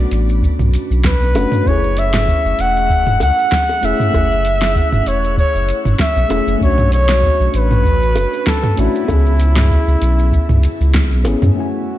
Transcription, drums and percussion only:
0.11 open hi-hat medium
0.11 shaker medium
0.30 shaker soft
0.43 kick loud
0.43 shaker soft
0.59 mid tom medium
0.59 shaker soft
0.74 open hi-hat medium
0.74 shaker medium
0.91 shaker soft
1.04 kick loud
1.04 snare medium
1.04 shaker soft
1.22 shaker soft
1.35 open hi-hat medium
1.35 high bongo medium
1.35 shaker medium
1.52 mid tom medium
1.52 shaker soft
1.66 kick loud
1.66 shaker soft
1.84 shaker soft
1.97 open hi-hat medium
1.97 shaker medium
2.14 snare medium
2.14 mid tom medium
2.14 shaker soft
2.28 kick loud
2.28 shaker soft
2.46 shaker soft
2.59 open hi-hat medium
2.59 shaker medium
2.77 shaker soft
2.90 kick loud
2.90 shaker soft
3.07 mid tom medium
3.07 shaker soft
3.20 open hi-hat medium
3.20 high bongo medium
3.20 shaker medium
3.39 shaker soft
3.52 kick loud
3.52 snare medium
3.52 shaker soft
3.69 high bongo medium
3.69 shaker soft
3.83 open hi-hat medium
3.83 shaker medium
4.00 mid tom medium
4.00 shaker soft
4.14 kick loud
4.14 high bongo medium
4.14 shaker soft
4.32 shaker soft
4.45 open hi-hat medium
4.45 shaker medium
4.62 snare medium
4.62 shaker soft
4.76 kick loud
4.76 shaker soft
4.93 mid tom medium
4.93 shaker soft
5.06 open hi-hat medium
5.06 shaker medium
5.24 shaker soft
5.38 kick loud
5.38 shaker soft
5.55 shaker soft
5.69 open hi-hat medium
5.69 shaker medium
5.85 mid tom medium
5.85 shaker soft
5.99 kick loud
5.99 snare medium
5.99 shaker soft
6.17 shaker soft
6.30 open hi-hat medium
6.30 high bongo loud
6.30 shaker medium
6.48 shaker soft
6.61 kick medium
6.61 shaker soft
6.78 mid tom medium
6.78 shaker soft
6.92 open hi-hat medium
6.92 shaker medium
7.09 snare medium
7.09 shaker soft
7.23 kick loud
7.23 shaker soft
7.41 shaker soft
7.54 open hi-hat loud
7.54 shaker medium
7.71 mid tom medium
7.71 shaker soft
7.85 kick loud
7.85 shaker soft
8.03 shaker soft
8.16 open hi-hat loud
8.16 high bongo medium
8.16 shaker medium
8.33 shaker soft
8.47 kick loud
8.47 snare medium
8.47 shaker soft
8.63 mid tom medium
8.63 high bongo medium
8.63 shaker soft
8.77 open hi-hat medium
8.77 shaker medium
8.95 shaker soft
9.08 kick loud
9.08 high bongo medium
9.08 shaker soft
9.26 shaker soft
9.40 open hi-hat loud
9.40 shaker medium
9.56 snare medium
9.56 mid tom medium
9.56 shaker soft
9.71 kick loud
9.71 shaker soft
9.88 shaker soft
10.02 open hi-hat loud
10.02 shaker medium
10.19 shaker soft
10.33 kick loud
10.33 shaker soft
10.49 mid tom medium
10.49 shaker soft
10.63 open hi-hat loud
10.63 shaker medium
10.81 shaker soft
10.94 kick loud
10.94 snare medium
10.94 shaker soft
11.12 shaker soft
11.25 open hi-hat loud
11.25 high bongo medium
11.25 shaker medium
11.42 mid tom medium
11.42 shaker soft

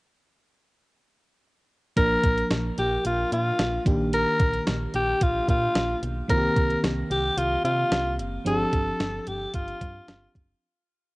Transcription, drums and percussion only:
1.97 kick loud
1.97 closed hi-hat medium
2.24 kick medium
2.24 closed hi-hat medium
2.38 closed hi-hat soft
2.51 snare medium
2.51 closed hi-hat medium
2.78 closed hi-hat medium
3.05 closed hi-hat medium
3.32 closed hi-hat medium
3.59 snare medium
3.59 closed hi-hat medium
3.86 kick loud
3.86 closed hi-hat medium
4.13 closed hi-hat medium
4.40 kick medium
4.40 closed hi-hat medium
4.54 closed hi-hat soft
4.67 snare medium
4.67 closed hi-hat medium
4.94 closed hi-hat medium
5.21 kick medium
5.21 closed hi-hat medium
5.48 kick medium
5.48 closed hi-hat medium
5.75 snare medium
5.75 closed hi-hat medium
6.03 closed hi-hat medium
6.30 kick medium
6.30 closed hi-hat medium
6.56 kick medium
6.56 closed hi-hat medium
6.70 closed hi-hat soft
6.84 snare medium
6.84 closed hi-hat medium
7.11 closed hi-hat medium
7.38 closed hi-hat medium
7.65 closed hi-hat medium
7.92 snare medium
7.92 closed hi-hat medium
8.19 closed hi-hat medium
8.46 closed hi-hat medium
8.73 kick medium
8.73 closed hi-hat medium
9.00 snare loud
9.00 closed hi-hat medium
9.27 closed hi-hat medium
9.54 kick medium
9.54 closed hi-hat medium
9.68 closed hi-hat soft
9.81 kick medium
9.81 closed hi-hat medium
10.08 snare medium
10.08 closed hi-hat medium
10.35 kick medium
10.35 closed hi-hat medium

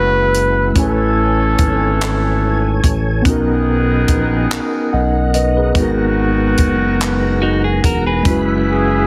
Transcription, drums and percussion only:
0.34 closed hi-hat medium
0.75 kick loud
0.75 closed hi-hat medium
1.58 kick medium
1.58 closed hi-hat medium
2.01 clap loud
2.01 closed hi-hat medium
2.84 kick medium
2.84 closed hi-hat medium
3.25 kick loud
3.25 closed hi-hat medium
4.08 kick medium
4.08 closed hi-hat medium
4.51 clap loud
4.51 closed hi-hat medium
5.34 closed hi-hat medium
5.75 kick loud
5.75 closed hi-hat medium
6.57 kick medium
6.57 closed hi-hat medium
7.00 clap loud
7.00 closed hi-hat medium
7.84 kick medium
7.84 closed hi-hat medium
8.25 kick loud
8.25 closed hi-hat medium

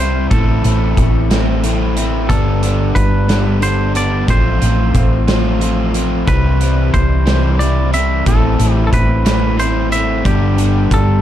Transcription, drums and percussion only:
0.31 kick loud
0.31 closed hi-hat medium
0.64 closed hi-hat medium
0.97 kick medium
0.97 closed hi-hat medium
1.31 snare loud
1.31 closed hi-hat medium
1.64 closed hi-hat medium
1.97 closed hi-hat medium
2.30 kick loud
2.30 closed hi-hat medium
2.63 closed hi-hat medium
2.96 kick medium
2.96 closed hi-hat medium
3.29 snare medium
3.29 closed hi-hat medium
3.62 closed hi-hat medium
3.95 closed hi-hat medium
4.28 kick loud
4.28 closed hi-hat medium
4.62 closed hi-hat medium
4.95 kick medium
4.95 closed hi-hat medium
5.28 snare medium
5.28 closed hi-hat medium
5.61 closed hi-hat medium
5.94 closed hi-hat soft
6.27 kick medium
6.27 closed hi-hat medium
6.61 closed hi-hat medium
6.94 kick medium
6.94 closed hi-hat medium
7.27 snare medium
7.27 closed hi-hat medium
7.60 closed hi-hat medium
7.94 closed hi-hat medium
8.26 kick loud
8.26 closed hi-hat medium
8.60 closed hi-hat medium
8.93 kick medium
8.93 closed hi-hat medium
9.26 snare loud
9.26 closed hi-hat medium
9.59 closed hi-hat medium
9.92 closed hi-hat medium
10.25 kick medium
10.25 closed hi-hat medium
10.58 closed hi-hat medium
10.91 kick medium
10.91 closed hi-hat medium

